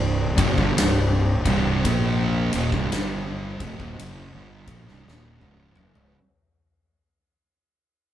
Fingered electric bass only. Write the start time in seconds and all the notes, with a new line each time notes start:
Already playing: C1
0.38 F#1
0.58 G1
0.78 C1
1.46 C1
1.85 A#1
2.54 D#1
2.72 C1
2.94 G1
3.60 F1
3.80 D#1
4.00 F#1
4.35 G1
4.67 A#1
4.88 C1
5.07 D#1
5.41 C#1
5.76 F#1
5.96 C#1